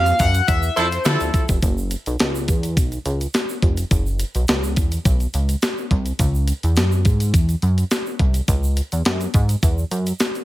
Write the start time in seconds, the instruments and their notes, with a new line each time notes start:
Already playing: analog synth bass F2, analog polysynth F5
0.06 closed hi-hat, shaker
0.19 analog synth bass F#2, analog polysynth F#5, kick, open hi-hat, shaker
0.35 closed hi-hat, shaker
0.48 analog synth bass E2, analog polysynth E5, kick, closed hi-hat, shaker
0.63 shaker
0.76 analog synth bass F2, horn section F3 E4 A4, analog polysynth C5, closed hi-hat, shaker
0.92 closed hi-hat, shaker
1.05 analog synth bass D3, horn section F3 E4 A4, snare, closed hi-hat, shaker
1.20 analog synth bass D2, closed hi-hat, shaker
1.34 kick, closed hi-hat, shaker
1.49 analog synth bass F1, kick, closed hi-hat, shaker
1.62 analog synth bass F#1, kick, closed hi-hat, shaker
1.78 shaker
1.91 closed hi-hat, shaker
2.06 analog synth bass B1, closed hi-hat, shaker
2.19 analog synth bass C#2, snare, closed hi-hat, shaker
2.35 shaker
2.48 analog synth bass E2, kick, closed hi-hat, shaker
2.63 closed hi-hat, shaker
2.77 analog synth bass B1, kick, closed hi-hat, shaker
2.92 closed hi-hat, shaker
3.06 analog synth bass C#2, closed hi-hat, shaker
3.21 closed hi-hat, shaker
3.34 snare, closed hi-hat, shaker
3.49 shaker
3.62 analog synth bass F1, kick, closed hi-hat
3.77 closed hi-hat, shaker
3.91 analog synth bass F#1, kick, closed hi-hat, shaker
4.06 shaker
4.19 closed hi-hat, shaker
4.35 analog synth bass B1, closed hi-hat, shaker
4.48 analog synth bass C#2, snare, closed hi-hat, shaker
4.63 shaker
4.76 analog synth bass E2, kick, closed hi-hat, shaker
4.92 closed hi-hat, shaker
5.05 analog synth bass B1, kick, closed hi-hat, shaker
5.20 closed hi-hat, shaker
5.34 analog synth bass C#2, closed hi-hat, shaker
5.49 closed hi-hat, shaker
5.62 snare, closed hi-hat, shaker
5.78 shaker
5.91 analog synth bass C2, kick, closed hi-hat
6.06 closed hi-hat, shaker
6.19 analog synth bass C#2, kick, closed hi-hat, shaker
6.35 shaker
6.48 closed hi-hat, shaker
6.63 analog synth bass E2, closed hi-hat, shaker
6.76 analog synth bass F#2, snare, closed hi-hat, shaker
6.92 shaker
7.05 analog synth bass G#2, kick, closed hi-hat, shaker
7.20 closed hi-hat, shaker
7.34 analog synth bass E2, kick, closed hi-hat, shaker
7.49 closed hi-hat, shaker
7.62 analog synth bass F#2, closed hi-hat, shaker
7.78 closed hi-hat, shaker
7.91 snare, closed hi-hat, shaker
8.06 shaker
8.19 analog synth bass C2, kick, closed hi-hat
8.34 closed hi-hat, shaker
8.48 analog synth bass C#2, kick, closed hi-hat, shaker
8.63 shaker
8.76 closed hi-hat, shaker
8.92 analog synth bass E2, closed hi-hat, shaker
9.05 analog synth bass F#2, snare, closed hi-hat, shaker
9.21 closed hi-hat, shaker
9.34 analog synth bass G#2, kick, closed hi-hat, shaker
9.49 closed hi-hat, shaker
9.63 analog synth bass E2, kick, closed hi-hat, shaker
9.78 shaker
9.91 analog synth bass F#2, closed hi-hat, shaker
10.07 closed hi-hat, shaker
10.19 snare, closed hi-hat, shaker
10.35 closed hi-hat, shaker